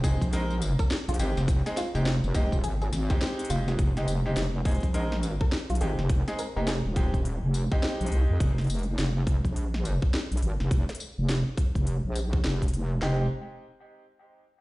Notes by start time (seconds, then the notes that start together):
Already playing: F1
0.04 G#3 C4 D#4 G#4, kick, closed hi-hat, tambourine
0.22 A#1, kick, closed hi-hat, tambourine
0.33 G#3 C4 D#4 A#4, closed hi-hat, tambourine
0.50 tambourine
0.62 closed hi-hat, tambourine
0.79 A#4, kick, tambourine
0.91 snare, tambourine
1.08 A#1 F4, closed hi-hat, tambourine
1.14 closed hi-hat
1.19 G#1 G#3 C4 D#4 G4, closed hi-hat, tambourine
1.37 F1, snare, tambourine
1.48 kick, closed hi-hat, tambourine
1.66 G#3 C4 D#4 G#4, snare, closed hi-hat, tambourine
1.77 F4, snare, closed hi-hat, tambourine
1.95 F1 G#3 C4 D#4 G4, tambourine
2.06 snare, tambourine
2.24 F1, tambourine
2.35 F1 G#3 C4 D#4 G4, kick, closed hi-hat, tambourine
2.52 D#1, kick, tambourine
2.64 G#1 G#4, closed hi-hat, tambourine
2.82 G#4, tambourine
2.92 G#1, snare, closed hi-hat, tambourine
3.10 G#3 C4 D#4 G4, kick, tambourine
3.21 snare, tambourine
3.39 closed hi-hat, tambourine
3.45 closed hi-hat
3.50 F1 F4, closed hi-hat, tambourine
3.68 F4, snare, tambourine
3.79 F1, kick, closed hi-hat
3.97 G#3 C4 D#4 G4, snare, closed hi-hat
4.08 F1, closed hi-hat, tambourine
4.26 G#3 C4 D#4 G4
4.37 F1, snare, closed hi-hat
4.65 G#3 C4 D#4 G#4, kick, closed hi-hat
4.68 closed hi-hat
4.71 closed hi-hat
4.74 closed hi-hat
4.80 A#1, kick, closed hi-hat
4.83 closed hi-hat
4.94 G#3 C4 D#4 A#4, closed hi-hat
5.12 snare
5.23 closed hi-hat, tambourine
5.41 A#4, kick
5.52 snare
5.70 A#1 F4, closed hi-hat
5.75 closed hi-hat
5.81 G#1 G#3 C4 D#4 G4 G#4, closed hi-hat
5.99 F1, snare
6.09 kick, closed hi-hat
6.28 G#3 C4 D#4 G#4, snare, closed hi-hat
6.39 A#4, closed hi-hat, tambourine
6.56 F1 G#3 C4 D#4 G4 A#4
6.67 G#4, snare, closed hi-hat
6.85 D#1
6.96 G#3 C4 D#4 G4, kick, closed hi-hat
7.14 kick, closed hi-hat
7.25 closed hi-hat
7.43 F1
7.54 closed hi-hat, tambourine
7.72 G#3 C4 D#4 G4, kick
7.83 snare
8.01 A#1, closed hi-hat
8.06 closed hi-hat
8.12 C2, closed hi-hat
8.29 F2
8.40 F1, kick, closed hi-hat
8.58 snare, closed hi-hat
8.61 closed hi-hat
8.64 closed hi-hat
8.67 F1, closed hi-hat
8.70 closed hi-hat, tambourine
8.74 closed hi-hat
8.79 closed hi-hat
8.83 closed hi-hat
8.98 F1, snare, closed hi-hat
9.27 kick, closed hi-hat
9.45 A#1, kick, closed hi-hat
9.56 closed hi-hat
9.74 snare
9.85 closed hi-hat, tambourine
10.02 kick
10.14 snare
10.31 A#1, closed hi-hat
10.37 closed hi-hat
10.43 G#1, closed hi-hat
10.60 F1, snare
10.71 kick, closed hi-hat
10.89 snare, closed hi-hat
10.95 closed hi-hat
11.00 tambourine
11.18 F1
11.29 snare, closed hi-hat
11.57 kick, closed hi-hat
11.75 F1, kick, closed hi-hat
11.87 closed hi-hat
12.04 A#1
12.16 closed hi-hat, tambourine
12.33 kick
12.44 F1, snare
12.62 kick, closed hi-hat
12.68 closed hi-hat
12.74 closed hi-hat
13.02 F1 G#3 C4 D#4 G4, snare